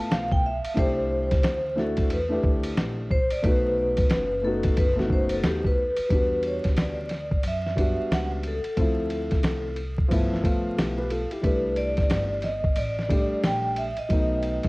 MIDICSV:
0, 0, Header, 1, 6, 480
1, 0, Start_track
1, 0, Key_signature, 1, "minor"
1, 0, Tempo, 666667
1, 553, Time_signature, 4, 2, 24, 8
1, 10573, End_track
2, 0, Start_track
2, 0, Title_t, "Vibraphone"
2, 0, Program_c, 0, 11
2, 0, Note_on_c, 0, 81, 101
2, 79, Note_on_c, 0, 77, 99
2, 84, Note_off_c, 0, 81, 0
2, 229, Note_off_c, 0, 77, 0
2, 231, Note_on_c, 0, 79, 101
2, 320, Note_off_c, 0, 79, 0
2, 331, Note_on_c, 0, 76, 93
2, 565, Note_on_c, 0, 72, 99
2, 569, Note_off_c, 0, 76, 0
2, 1292, Note_on_c, 0, 69, 83
2, 1301, Note_off_c, 0, 72, 0
2, 1530, Note_off_c, 0, 69, 0
2, 1535, Note_on_c, 0, 71, 82
2, 1748, Note_off_c, 0, 71, 0
2, 2240, Note_on_c, 0, 72, 104
2, 2389, Note_off_c, 0, 72, 0
2, 2391, Note_on_c, 0, 74, 114
2, 2479, Note_on_c, 0, 71, 110
2, 2480, Note_off_c, 0, 74, 0
2, 3201, Note_on_c, 0, 69, 91
2, 3217, Note_off_c, 0, 71, 0
2, 3444, Note_off_c, 0, 69, 0
2, 3446, Note_on_c, 0, 71, 105
2, 3551, Note_off_c, 0, 71, 0
2, 3692, Note_on_c, 0, 72, 93
2, 3835, Note_off_c, 0, 72, 0
2, 3839, Note_on_c, 0, 69, 84
2, 3916, Note_off_c, 0, 69, 0
2, 3931, Note_on_c, 0, 67, 92
2, 4060, Note_off_c, 0, 67, 0
2, 4080, Note_on_c, 0, 71, 97
2, 4380, Note_off_c, 0, 71, 0
2, 4411, Note_on_c, 0, 71, 94
2, 4649, Note_off_c, 0, 71, 0
2, 4657, Note_on_c, 0, 73, 83
2, 4760, Note_off_c, 0, 73, 0
2, 4898, Note_on_c, 0, 74, 88
2, 5336, Note_off_c, 0, 74, 0
2, 5383, Note_on_c, 0, 76, 102
2, 5861, Note_on_c, 0, 78, 106
2, 5862, Note_off_c, 0, 76, 0
2, 5963, Note_off_c, 0, 78, 0
2, 6102, Note_on_c, 0, 69, 77
2, 7019, Note_off_c, 0, 69, 0
2, 8239, Note_on_c, 0, 71, 88
2, 8475, Note_on_c, 0, 74, 95
2, 8483, Note_off_c, 0, 71, 0
2, 8953, Note_on_c, 0, 75, 82
2, 8969, Note_off_c, 0, 74, 0
2, 9197, Note_on_c, 0, 74, 91
2, 9200, Note_off_c, 0, 75, 0
2, 9688, Note_on_c, 0, 79, 101
2, 9689, Note_off_c, 0, 74, 0
2, 9904, Note_off_c, 0, 79, 0
2, 9921, Note_on_c, 0, 76, 98
2, 10055, Note_off_c, 0, 76, 0
2, 10069, Note_on_c, 0, 75, 86
2, 10573, Note_off_c, 0, 75, 0
2, 10573, End_track
3, 0, Start_track
3, 0, Title_t, "Grand piano"
3, 0, Program_c, 1, 0
3, 0, Note_on_c, 1, 57, 77
3, 0, Note_on_c, 1, 59, 73
3, 0, Note_on_c, 1, 64, 62
3, 0, Note_on_c, 1, 65, 81
3, 325, Note_off_c, 1, 57, 0
3, 330, Note_off_c, 1, 59, 0
3, 335, Note_off_c, 1, 64, 0
3, 339, Note_off_c, 1, 65, 0
3, 533, Note_on_c, 1, 57, 78
3, 542, Note_on_c, 1, 62, 71
3, 550, Note_on_c, 1, 64, 71
3, 559, Note_on_c, 1, 67, 87
3, 1084, Note_off_c, 1, 57, 0
3, 1089, Note_off_c, 1, 62, 0
3, 1092, Note_off_c, 1, 64, 0
3, 1097, Note_off_c, 1, 67, 0
3, 1264, Note_on_c, 1, 57, 78
3, 1272, Note_on_c, 1, 62, 69
3, 1281, Note_on_c, 1, 64, 72
3, 1288, Note_on_c, 1, 66, 85
3, 1539, Note_off_c, 1, 57, 0
3, 1543, Note_off_c, 1, 62, 0
3, 1548, Note_off_c, 1, 64, 0
3, 1551, Note_off_c, 1, 66, 0
3, 1647, Note_on_c, 1, 57, 77
3, 1657, Note_on_c, 1, 62, 67
3, 1664, Note_on_c, 1, 64, 69
3, 1675, Note_on_c, 1, 67, 78
3, 2248, Note_off_c, 1, 57, 0
3, 2252, Note_off_c, 1, 62, 0
3, 2256, Note_off_c, 1, 64, 0
3, 2261, Note_off_c, 1, 67, 0
3, 2463, Note_on_c, 1, 57, 80
3, 2472, Note_on_c, 1, 59, 72
3, 2480, Note_on_c, 1, 63, 74
3, 2492, Note_on_c, 1, 66, 88
3, 3009, Note_off_c, 1, 57, 0
3, 3014, Note_off_c, 1, 59, 0
3, 3017, Note_off_c, 1, 63, 0
3, 3023, Note_off_c, 1, 66, 0
3, 3184, Note_on_c, 1, 57, 75
3, 3194, Note_on_c, 1, 59, 71
3, 3202, Note_on_c, 1, 63, 77
3, 3216, Note_on_c, 1, 66, 87
3, 3459, Note_off_c, 1, 57, 0
3, 3464, Note_off_c, 1, 59, 0
3, 3468, Note_off_c, 1, 63, 0
3, 3475, Note_off_c, 1, 66, 0
3, 3567, Note_on_c, 1, 57, 75
3, 3575, Note_on_c, 1, 59, 70
3, 3585, Note_on_c, 1, 60, 56
3, 3593, Note_on_c, 1, 66, 87
3, 3619, Note_off_c, 1, 60, 0
3, 3635, Note_on_c, 1, 63, 78
3, 4168, Note_off_c, 1, 57, 0
3, 4171, Note_off_c, 1, 59, 0
3, 4180, Note_off_c, 1, 66, 0
3, 4202, Note_off_c, 1, 63, 0
3, 4384, Note_on_c, 1, 55, 67
3, 4396, Note_on_c, 1, 59, 66
3, 4406, Note_on_c, 1, 62, 63
3, 4415, Note_on_c, 1, 66, 76
3, 5098, Note_off_c, 1, 55, 0
3, 5104, Note_off_c, 1, 59, 0
3, 5109, Note_off_c, 1, 62, 0
3, 5113, Note_off_c, 1, 66, 0
3, 5582, Note_on_c, 1, 55, 70
3, 5593, Note_on_c, 1, 59, 61
3, 5602, Note_on_c, 1, 62, 65
3, 5610, Note_on_c, 1, 66, 81
3, 6129, Note_off_c, 1, 55, 0
3, 6134, Note_off_c, 1, 59, 0
3, 6139, Note_off_c, 1, 62, 0
3, 6143, Note_off_c, 1, 66, 0
3, 6308, Note_on_c, 1, 53, 68
3, 6316, Note_on_c, 1, 57, 67
3, 6326, Note_on_c, 1, 60, 69
3, 6336, Note_on_c, 1, 64, 79
3, 7020, Note_off_c, 1, 53, 0
3, 7024, Note_off_c, 1, 57, 0
3, 7029, Note_off_c, 1, 60, 0
3, 7034, Note_off_c, 1, 64, 0
3, 7258, Note_on_c, 1, 53, 91
3, 7269, Note_on_c, 1, 57, 81
3, 7277, Note_on_c, 1, 59, 83
3, 7286, Note_on_c, 1, 64, 96
3, 7469, Note_off_c, 1, 53, 0
3, 7474, Note_off_c, 1, 57, 0
3, 7478, Note_off_c, 1, 59, 0
3, 7483, Note_off_c, 1, 64, 0
3, 7495, Note_on_c, 1, 53, 82
3, 7505, Note_on_c, 1, 57, 73
3, 7514, Note_on_c, 1, 59, 70
3, 7525, Note_on_c, 1, 65, 90
3, 7752, Note_on_c, 1, 67, 55
3, 7757, Note_on_c, 1, 64, 54
3, 7759, Note_off_c, 1, 65, 0
3, 7894, Note_off_c, 1, 67, 0
3, 7896, Note_off_c, 1, 64, 0
3, 7904, Note_on_c, 1, 71, 69
3, 7907, Note_on_c, 1, 67, 59
3, 7990, Note_off_c, 1, 71, 0
3, 7991, Note_on_c, 1, 69, 65
3, 7992, Note_off_c, 1, 67, 0
3, 7998, Note_on_c, 1, 65, 56
3, 8045, Note_off_c, 1, 53, 0
3, 8050, Note_off_c, 1, 57, 0
3, 8055, Note_off_c, 1, 59, 0
3, 8133, Note_off_c, 1, 69, 0
3, 8137, Note_off_c, 1, 65, 0
3, 8146, Note_on_c, 1, 67, 58
3, 8150, Note_on_c, 1, 64, 47
3, 8218, Note_on_c, 1, 55, 75
3, 8225, Note_on_c, 1, 57, 63
3, 8235, Note_off_c, 1, 64, 0
3, 8237, Note_on_c, 1, 62, 65
3, 8246, Note_on_c, 1, 64, 75
3, 8372, Note_off_c, 1, 67, 0
3, 8935, Note_off_c, 1, 55, 0
3, 8938, Note_off_c, 1, 57, 0
3, 8944, Note_off_c, 1, 62, 0
3, 8949, Note_off_c, 1, 64, 0
3, 9422, Note_on_c, 1, 55, 74
3, 9428, Note_on_c, 1, 57, 69
3, 9438, Note_on_c, 1, 62, 66
3, 9448, Note_on_c, 1, 67, 77
3, 9969, Note_off_c, 1, 55, 0
3, 9972, Note_off_c, 1, 57, 0
3, 9977, Note_off_c, 1, 62, 0
3, 9982, Note_off_c, 1, 67, 0
3, 10142, Note_on_c, 1, 54, 68
3, 10151, Note_on_c, 1, 57, 66
3, 10160, Note_on_c, 1, 59, 65
3, 10169, Note_on_c, 1, 63, 80
3, 10573, Note_off_c, 1, 54, 0
3, 10573, Note_off_c, 1, 57, 0
3, 10573, Note_off_c, 1, 59, 0
3, 10573, Note_off_c, 1, 63, 0
3, 10573, End_track
4, 0, Start_track
4, 0, Title_t, "Upright bass"
4, 0, Program_c, 2, 32
4, 72, Note_on_c, 2, 35, 85
4, 442, Note_off_c, 2, 35, 0
4, 558, Note_on_c, 2, 36, 111
4, 1012, Note_off_c, 2, 36, 0
4, 1034, Note_on_c, 2, 38, 109
4, 1489, Note_off_c, 2, 38, 0
4, 1515, Note_on_c, 2, 40, 98
4, 1742, Note_off_c, 2, 40, 0
4, 1756, Note_on_c, 2, 38, 99
4, 1983, Note_off_c, 2, 38, 0
4, 1998, Note_on_c, 2, 34, 90
4, 2364, Note_off_c, 2, 34, 0
4, 2476, Note_on_c, 2, 35, 117
4, 2931, Note_off_c, 2, 35, 0
4, 2957, Note_on_c, 2, 30, 110
4, 3411, Note_off_c, 2, 30, 0
4, 3439, Note_on_c, 2, 30, 97
4, 3892, Note_off_c, 2, 30, 0
4, 3917, Note_on_c, 2, 39, 87
4, 4284, Note_off_c, 2, 39, 0
4, 4396, Note_on_c, 2, 40, 97
4, 4764, Note_off_c, 2, 40, 0
4, 4877, Note_on_c, 2, 38, 100
4, 5331, Note_off_c, 2, 38, 0
4, 5352, Note_on_c, 2, 42, 102
4, 5721, Note_off_c, 2, 42, 0
4, 5837, Note_on_c, 2, 37, 94
4, 6204, Note_off_c, 2, 37, 0
4, 6318, Note_on_c, 2, 38, 104
4, 6685, Note_off_c, 2, 38, 0
4, 6792, Note_on_c, 2, 36, 99
4, 7249, Note_off_c, 2, 36, 0
4, 7283, Note_on_c, 2, 31, 103
4, 7647, Note_off_c, 2, 31, 0
4, 7754, Note_on_c, 2, 35, 77
4, 8122, Note_off_c, 2, 35, 0
4, 8238, Note_on_c, 2, 36, 99
4, 8604, Note_off_c, 2, 36, 0
4, 8710, Note_on_c, 2, 31, 101
4, 9167, Note_off_c, 2, 31, 0
4, 9191, Note_on_c, 2, 33, 97
4, 9561, Note_off_c, 2, 33, 0
4, 9671, Note_on_c, 2, 34, 85
4, 10041, Note_off_c, 2, 34, 0
4, 10154, Note_on_c, 2, 35, 100
4, 10523, Note_off_c, 2, 35, 0
4, 10573, End_track
5, 0, Start_track
5, 0, Title_t, "Muted upright bass strokes"
5, 468, Note_on_c, 9, 29, 48
5, 540, Note_off_c, 9, 29, 0
5, 2390, Note_on_c, 9, 29, 48
5, 2462, Note_off_c, 9, 29, 0
5, 4308, Note_on_c, 9, 29, 46
5, 4380, Note_off_c, 9, 29, 0
5, 4789, Note_on_c, 9, 29, 48
5, 4861, Note_off_c, 9, 29, 0
5, 5745, Note_on_c, 9, 29, 45
5, 5817, Note_off_c, 9, 29, 0
5, 6226, Note_on_c, 9, 29, 48
5, 6298, Note_off_c, 9, 29, 0
5, 6709, Note_on_c, 9, 29, 49
5, 6781, Note_off_c, 9, 29, 0
5, 7663, Note_on_c, 9, 29, 49
5, 7735, Note_off_c, 9, 29, 0
5, 8144, Note_on_c, 9, 29, 47
5, 8216, Note_off_c, 9, 29, 0
5, 8627, Note_on_c, 9, 29, 48
5, 8699, Note_off_c, 9, 29, 0
5, 9579, Note_on_c, 9, 29, 44
5, 9651, Note_off_c, 9, 29, 0
5, 10062, Note_on_c, 9, 29, 44
5, 10134, Note_off_c, 9, 29, 0
5, 10547, Note_on_c, 9, 29, 50
5, 10573, Note_off_c, 9, 29, 0
5, 10573, End_track
6, 0, Start_track
6, 0, Title_t, "Drums"
6, 82, Note_on_c, 9, 44, 52
6, 82, Note_on_c, 9, 51, 78
6, 83, Note_on_c, 9, 38, 119
6, 154, Note_off_c, 9, 44, 0
6, 154, Note_off_c, 9, 51, 0
6, 155, Note_off_c, 9, 38, 0
6, 226, Note_on_c, 9, 36, 109
6, 298, Note_off_c, 9, 36, 0
6, 465, Note_on_c, 9, 51, 74
6, 537, Note_off_c, 9, 51, 0
6, 555, Note_on_c, 9, 36, 102
6, 555, Note_on_c, 9, 51, 77
6, 627, Note_off_c, 9, 36, 0
6, 627, Note_off_c, 9, 51, 0
6, 945, Note_on_c, 9, 51, 61
6, 948, Note_on_c, 9, 36, 96
6, 957, Note_on_c, 9, 38, 34
6, 1017, Note_off_c, 9, 51, 0
6, 1020, Note_off_c, 9, 36, 0
6, 1029, Note_off_c, 9, 38, 0
6, 1032, Note_on_c, 9, 44, 54
6, 1032, Note_on_c, 9, 51, 77
6, 1040, Note_on_c, 9, 38, 116
6, 1104, Note_off_c, 9, 44, 0
6, 1104, Note_off_c, 9, 51, 0
6, 1112, Note_off_c, 9, 38, 0
6, 1283, Note_on_c, 9, 38, 36
6, 1355, Note_off_c, 9, 38, 0
6, 1418, Note_on_c, 9, 51, 57
6, 1425, Note_on_c, 9, 36, 86
6, 1490, Note_off_c, 9, 51, 0
6, 1497, Note_off_c, 9, 36, 0
6, 1514, Note_on_c, 9, 51, 87
6, 1586, Note_off_c, 9, 51, 0
6, 1753, Note_on_c, 9, 36, 82
6, 1825, Note_off_c, 9, 36, 0
6, 1897, Note_on_c, 9, 51, 77
6, 1969, Note_off_c, 9, 51, 0
6, 1997, Note_on_c, 9, 38, 121
6, 1997, Note_on_c, 9, 44, 57
6, 1997, Note_on_c, 9, 51, 70
6, 2069, Note_off_c, 9, 38, 0
6, 2069, Note_off_c, 9, 44, 0
6, 2069, Note_off_c, 9, 51, 0
6, 2236, Note_on_c, 9, 36, 95
6, 2308, Note_off_c, 9, 36, 0
6, 2379, Note_on_c, 9, 51, 72
6, 2451, Note_off_c, 9, 51, 0
6, 2474, Note_on_c, 9, 36, 109
6, 2474, Note_on_c, 9, 51, 69
6, 2546, Note_off_c, 9, 36, 0
6, 2546, Note_off_c, 9, 51, 0
6, 2858, Note_on_c, 9, 51, 65
6, 2867, Note_on_c, 9, 36, 101
6, 2930, Note_off_c, 9, 51, 0
6, 2939, Note_off_c, 9, 36, 0
6, 2950, Note_on_c, 9, 44, 53
6, 2950, Note_on_c, 9, 51, 72
6, 2957, Note_on_c, 9, 38, 125
6, 3022, Note_off_c, 9, 44, 0
6, 3022, Note_off_c, 9, 51, 0
6, 3029, Note_off_c, 9, 38, 0
6, 3335, Note_on_c, 9, 51, 62
6, 3344, Note_on_c, 9, 36, 83
6, 3407, Note_off_c, 9, 51, 0
6, 3416, Note_off_c, 9, 36, 0
6, 3433, Note_on_c, 9, 51, 90
6, 3437, Note_on_c, 9, 36, 116
6, 3505, Note_off_c, 9, 51, 0
6, 3509, Note_off_c, 9, 36, 0
6, 3595, Note_on_c, 9, 38, 40
6, 3667, Note_off_c, 9, 38, 0
6, 3672, Note_on_c, 9, 36, 79
6, 3744, Note_off_c, 9, 36, 0
6, 3812, Note_on_c, 9, 51, 72
6, 3884, Note_off_c, 9, 51, 0
6, 3914, Note_on_c, 9, 44, 53
6, 3914, Note_on_c, 9, 51, 78
6, 3915, Note_on_c, 9, 38, 109
6, 3986, Note_off_c, 9, 44, 0
6, 3986, Note_off_c, 9, 51, 0
6, 3987, Note_off_c, 9, 38, 0
6, 4064, Note_on_c, 9, 36, 94
6, 4136, Note_off_c, 9, 36, 0
6, 4294, Note_on_c, 9, 51, 73
6, 4366, Note_off_c, 9, 51, 0
6, 4394, Note_on_c, 9, 36, 107
6, 4394, Note_on_c, 9, 51, 68
6, 4466, Note_off_c, 9, 36, 0
6, 4466, Note_off_c, 9, 51, 0
6, 4627, Note_on_c, 9, 51, 49
6, 4699, Note_off_c, 9, 51, 0
6, 4781, Note_on_c, 9, 51, 45
6, 4788, Note_on_c, 9, 36, 86
6, 4793, Note_on_c, 9, 38, 33
6, 4853, Note_off_c, 9, 51, 0
6, 4860, Note_off_c, 9, 36, 0
6, 4865, Note_off_c, 9, 38, 0
6, 4872, Note_on_c, 9, 44, 52
6, 4872, Note_on_c, 9, 51, 67
6, 4879, Note_on_c, 9, 38, 115
6, 4944, Note_off_c, 9, 44, 0
6, 4944, Note_off_c, 9, 51, 0
6, 4951, Note_off_c, 9, 38, 0
6, 5106, Note_on_c, 9, 51, 50
6, 5121, Note_on_c, 9, 38, 35
6, 5178, Note_off_c, 9, 51, 0
6, 5193, Note_off_c, 9, 38, 0
6, 5266, Note_on_c, 9, 36, 72
6, 5338, Note_off_c, 9, 36, 0
6, 5352, Note_on_c, 9, 51, 84
6, 5424, Note_off_c, 9, 51, 0
6, 5518, Note_on_c, 9, 38, 34
6, 5590, Note_off_c, 9, 38, 0
6, 5594, Note_on_c, 9, 36, 81
6, 5601, Note_on_c, 9, 51, 61
6, 5666, Note_off_c, 9, 36, 0
6, 5673, Note_off_c, 9, 51, 0
6, 5844, Note_on_c, 9, 38, 106
6, 5844, Note_on_c, 9, 44, 46
6, 5844, Note_on_c, 9, 51, 70
6, 5916, Note_off_c, 9, 38, 0
6, 5916, Note_off_c, 9, 44, 0
6, 5916, Note_off_c, 9, 51, 0
6, 6071, Note_on_c, 9, 51, 69
6, 6143, Note_off_c, 9, 51, 0
6, 6221, Note_on_c, 9, 51, 52
6, 6293, Note_off_c, 9, 51, 0
6, 6314, Note_on_c, 9, 51, 73
6, 6315, Note_on_c, 9, 36, 97
6, 6386, Note_off_c, 9, 51, 0
6, 6387, Note_off_c, 9, 36, 0
6, 6552, Note_on_c, 9, 51, 53
6, 6624, Note_off_c, 9, 51, 0
6, 6702, Note_on_c, 9, 51, 41
6, 6709, Note_on_c, 9, 36, 88
6, 6715, Note_on_c, 9, 38, 31
6, 6774, Note_off_c, 9, 51, 0
6, 6781, Note_off_c, 9, 36, 0
6, 6787, Note_off_c, 9, 38, 0
6, 6790, Note_on_c, 9, 44, 48
6, 6790, Note_on_c, 9, 51, 68
6, 6798, Note_on_c, 9, 38, 113
6, 6862, Note_off_c, 9, 44, 0
6, 6862, Note_off_c, 9, 51, 0
6, 6870, Note_off_c, 9, 38, 0
6, 7028, Note_on_c, 9, 51, 48
6, 7100, Note_off_c, 9, 51, 0
6, 7186, Note_on_c, 9, 36, 84
6, 7258, Note_off_c, 9, 36, 0
6, 7280, Note_on_c, 9, 36, 99
6, 7280, Note_on_c, 9, 51, 79
6, 7352, Note_off_c, 9, 36, 0
6, 7352, Note_off_c, 9, 51, 0
6, 7440, Note_on_c, 9, 38, 35
6, 7512, Note_off_c, 9, 38, 0
6, 7515, Note_on_c, 9, 36, 81
6, 7523, Note_on_c, 9, 51, 61
6, 7587, Note_off_c, 9, 36, 0
6, 7595, Note_off_c, 9, 51, 0
6, 7766, Note_on_c, 9, 44, 48
6, 7766, Note_on_c, 9, 51, 77
6, 7767, Note_on_c, 9, 38, 112
6, 7838, Note_off_c, 9, 44, 0
6, 7838, Note_off_c, 9, 51, 0
6, 7839, Note_off_c, 9, 38, 0
6, 7996, Note_on_c, 9, 51, 73
6, 8068, Note_off_c, 9, 51, 0
6, 8145, Note_on_c, 9, 51, 48
6, 8217, Note_off_c, 9, 51, 0
6, 8234, Note_on_c, 9, 36, 100
6, 8235, Note_on_c, 9, 51, 68
6, 8306, Note_off_c, 9, 36, 0
6, 8307, Note_off_c, 9, 51, 0
6, 8468, Note_on_c, 9, 51, 49
6, 8540, Note_off_c, 9, 51, 0
6, 8618, Note_on_c, 9, 51, 42
6, 8624, Note_on_c, 9, 36, 96
6, 8630, Note_on_c, 9, 38, 33
6, 8690, Note_off_c, 9, 51, 0
6, 8696, Note_off_c, 9, 36, 0
6, 8702, Note_off_c, 9, 38, 0
6, 8710, Note_on_c, 9, 44, 51
6, 8710, Note_on_c, 9, 51, 72
6, 8718, Note_on_c, 9, 38, 107
6, 8782, Note_off_c, 9, 44, 0
6, 8782, Note_off_c, 9, 51, 0
6, 8790, Note_off_c, 9, 38, 0
6, 8943, Note_on_c, 9, 51, 50
6, 8958, Note_on_c, 9, 38, 34
6, 9015, Note_off_c, 9, 51, 0
6, 9030, Note_off_c, 9, 38, 0
6, 9102, Note_on_c, 9, 36, 83
6, 9174, Note_off_c, 9, 36, 0
6, 9186, Note_on_c, 9, 51, 78
6, 9258, Note_off_c, 9, 51, 0
6, 9352, Note_on_c, 9, 38, 35
6, 9424, Note_off_c, 9, 38, 0
6, 9429, Note_on_c, 9, 36, 83
6, 9435, Note_on_c, 9, 51, 63
6, 9501, Note_off_c, 9, 36, 0
6, 9507, Note_off_c, 9, 51, 0
6, 9674, Note_on_c, 9, 44, 50
6, 9674, Note_on_c, 9, 51, 70
6, 9675, Note_on_c, 9, 38, 115
6, 9746, Note_off_c, 9, 44, 0
6, 9746, Note_off_c, 9, 51, 0
6, 9747, Note_off_c, 9, 38, 0
6, 9909, Note_on_c, 9, 51, 72
6, 9981, Note_off_c, 9, 51, 0
6, 10056, Note_on_c, 9, 51, 47
6, 10128, Note_off_c, 9, 51, 0
6, 10151, Note_on_c, 9, 51, 67
6, 10153, Note_on_c, 9, 36, 101
6, 10223, Note_off_c, 9, 51, 0
6, 10225, Note_off_c, 9, 36, 0
6, 10388, Note_on_c, 9, 51, 50
6, 10460, Note_off_c, 9, 51, 0
6, 10537, Note_on_c, 9, 51, 41
6, 10546, Note_on_c, 9, 36, 92
6, 10550, Note_on_c, 9, 38, 31
6, 10573, Note_off_c, 9, 36, 0
6, 10573, Note_off_c, 9, 38, 0
6, 10573, Note_off_c, 9, 51, 0
6, 10573, End_track
0, 0, End_of_file